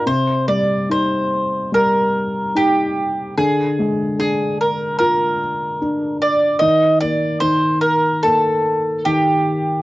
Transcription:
X:1
M:4/4
L:1/8
Q:1/4=73
K:Cdor
V:1 name="Mandolin"
c d c2 B2 G2 | _A2 A B B3 d | e d c B A2 G2 |]
V:2 name="Felt piano" clef=bass
C, G, E2 G,2 E2 | D, _A, D2 F2 D2 | E, B, E,2 B,2 E,2 |]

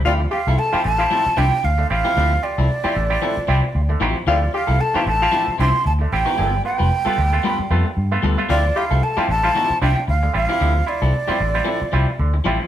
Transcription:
X:1
M:4/4
L:1/16
Q:"Swing 16ths" 1/4=114
K:Ddor
V:1 name="Flute"
d2 f2 a2 a4 g2 f2 f2- | f2 d12 z2 | d2 f2 a2 a4 c'2 a2 g2- | g2 g12 z2 |
d2 f2 a2 a4 g2 f2 f2- | f2 d12 z2 |]
V:2 name="Tenor saxophone"
F z G z A F z F z2 D z4 z | z16 | F z G z A F z F z2 D z4 z | z16 |
F z G z A F z F z2 D z4 z | z16 |]
V:3 name="Clav"
[D,A,] z [FG] z2 [CEFG] [D,A,] [CEFG] [D,A,] z [CEFG] [FG] [FG] [D,A,] [CEFG] z | [D,A,] z [FG] z2 [CEFG] [D,A,] [CEFG] [D,A,] z [CEFG] [FG] [FG] [D,A,] [CEFG] z | [D,A,] z [FG] z2 [CEFG] [D,A,] [CEFG] [D,A,] z [CEFG] [FG] [FG] [D,A,] [CEFG] z | [G,,D,] z [B,F] z2 [A,B,F] [G,,D,] [A,B,F] [G,,D,] z [A,B,F] [B,F] z [A,B,F] [G,,D,] [A,B,F] |
D, z [EF] z2 [G,CEF] D, [G,CEF] D, z [G,CEF] [EF] [EF] D, [G,CEF] z | D, z [EF] z2 [G,CEF] D, [G,CEF] D, z [G,CEF] [EF] D, z [G,CEF] [EF] |]
V:4 name="Clean electric guitar"
[F,CEG] z2 [F,CEA] z [F,CEG] z2 [F,CEG] z [F,CEG] z4 [F,CEG] | [F,CEG] z2 [F,CEA] z [F,CEG] z2 [F,CEA] z [F,CEG] z3 [F,CEG]2 | [F,CEG] z2 [F,CEA] z [F,CEG]2 z [F,CEG] z [F,CEG] z4 [F,CEG] | [G,B,FA]2 z [G,B,FB] z [G,B,FA] z2 [G,B,FB] z [G,B,FA] z3 [G,B,FA] z |
[F,CEG] z2 [F,CEA] z [F,CEG] z2 [F,CEG]2 [F,CEG] z4 [F,CEG] | [F,CEG] z2 [F,CEA] z [F,CEG] z2 [F,CEA] z [F,CEG] z3 [F,CEG] z |]
V:5 name="Fingered electric bass" clef=bass
D,,2 z C,, z2 A,,,2 z2 C,, z D,,2 A,,, z | D,,2 z C,, z2 A,,,2 z2 C,, z D,,2 A,,, z | D,,2 z C,, z2 A,,,2 z2 C,, z D,,2 A,,, z | G,,,2 z F,,, z2 D,,2 z2 F,, z G,,2 D,, z |
D,,2 z C,, z2 A,,,2 z2 C,, z D,,2 A,,, z | D,,2 z C,, z2 A,,,2 z2 C,, z D,,2 A,,, z |]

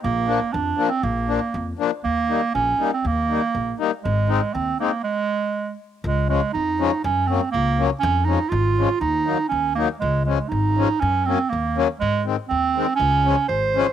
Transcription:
X:1
M:2/4
L:1/16
Q:1/4=120
K:Ab
V:1 name="Clarinet"
B,4 =D3 C | B,6 z2 | B,4 D3 C | B,6 z2 |
A,4 C2 B,2 | A,6 z2 | [K:Db] A,2 A,2 E4 | D2 C2 B,3 z |
D2 E2 F4 | E4 D2 B,2 | A,2 A,2 E4 | D2 C2 B,3 z |
A,2 z2 C4 | D4 c4 |]
V:2 name="Accordion"
z2 [F,B,=D]2 z2 [F,B,D]2 | z2 [F,B,=D]2 z2 [F,B,D]2 | z2 [G,B,E]2 z2 [G,B,E]2 | z2 [G,B,E]2 z2 [G,B,E]2 |
z2 [A,CE]2 z2 [A,CE]2 | z8 | [K:Db] z2 [F,A,D]2 z2 [F,A,D]2 | z2 [G,B,D]2 z2 [G,B,D]2 |
z2 [F,A,D]2 z2 [F,A,D]2 | z2 [G,B,E]2 z2 [G,B,E]2 | z2 [F,A,D]2 z2 [F,A,D]2 | z2 [G,B,D]2 z2 [G,B,D]2 |
z2 [E,A,C]2 z2 [E,A,C]2 | z2 [F,A,D]2 z2 [F,A,D]2 |]
V:3 name="Upright bass" clef=bass
B,,,4 F,,2 z2 | B,,,4 F,,2 z2 | E,,4 B,,,2 z2 | E,,4 B,,,2 z2 |
A,,,4 E,,2 z2 | z8 | [K:Db] D,,4 F,,4 | G,,4 D,,4 |
F,,4 A,,,4 | E,,4 E,,4 | D,,4 A,,,4 | G,,4 E,,4 |
A,,4 E,,4 | D,,4 A,,,4 |]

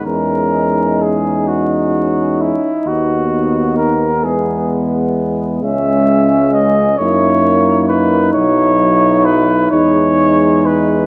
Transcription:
X:1
M:6/8
L:1/8
Q:3/8=43
K:Elyd
V:1 name="Cornet"
A2 G F2 E | F2 A G z2 | e2 d c2 B | c2 B c2 B |]
V:2 name="French horn section"
D6- | D3 B,3 | C3 E3- | E3 D3 |]
V:3 name="Trombone section"
C6 | B,6 | C3 D3- | D6 |]
V:4 name="Trombone" clef=bass
G,4- G, z | B,3 G,3 | G,3 A,3 | F,3 G,3 |]
V:5 name="Tuba" clef=bass
E,,4- E,, z | D,,3 E,,3 | C,,3 F,,3 | B,,,3 E,,3 |]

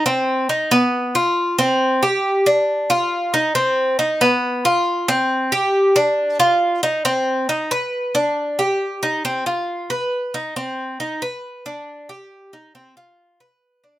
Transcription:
X:1
M:4/4
L:1/8
Q:1/4=137
K:Cm
V:1 name="Cuban tres"
C2 E =B,2 F2 C- | C G2 D2 F2 E | C2 E =B,2 F2 C- | C G2 D2 F2 E |
C2 E =B2 D2 G- | G E C F2 =B2 ^D | C2 E =B2 D2 G- | G E C F2 =B2 D |]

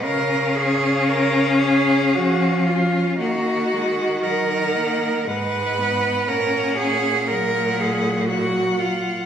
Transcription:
X:1
M:3/4
L:1/8
Q:1/4=58
K:F#
V:1 name="Cello"
e6 | f2 f2 f2 | f2 f2 f2 |]
V:2 name="Cello"
A G A G F E | F2 A2 B2 | A G A G F E |]
V:3 name="Cello"
C6 | A, G, F, A, G, B, | C2 F,4 |]
V:4 name="Cello" clef=bass
C,4 E,2 | D,4 G,,2 | A,,6 |]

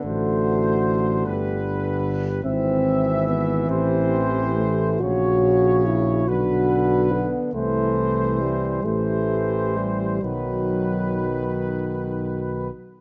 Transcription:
X:1
M:6/8
L:1/8
Q:3/8=47
K:Bphr
V:1 name="Trumpet section"
c3 B3 | e3 c3 | ^c3 B3 | c3 c3 |
B4- B z |]
V:2 name="French horn section"
F3 G3 | E3 G3 | F3 D3 | E3 G3 |
F4- F z |]
V:3 name="Euphonium"
A,4 z2 | C2 B, C2 A, | F2 E F2 B, | A,2 G, A,2 G, |
F,3 z3 |]
V:4 name="Trombone" clef=bass
D,6 | E,6 | ^C,3 D,3 | E,3 E,3 |
^D,4- D, z |]
V:5 name="Tuba" clef=bass
A,,,3 G,,,3 | ^G,,,3 A,,,3 | ^A,,,3 B,,,3 | C,,3 A,,,3 |
B,,,4- B,,, z |]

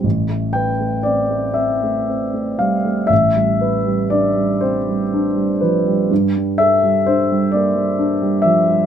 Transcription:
X:1
M:6/8
L:1/16
Q:3/8=40
K:Am
V:1 name="Grand piano"
z2 g2 d2 e4 f2 | e4 d2 c4 B2 | z2 e2 c2 d4 e2 |]
V:2 name="Grand piano" clef=bass
A,,, A, B A, C A, C A, C A, G, A, | A,,, G, B G, D G, C G, D G, F, G, | G,, G, A G, D G, _B, G, D G, F, G, |]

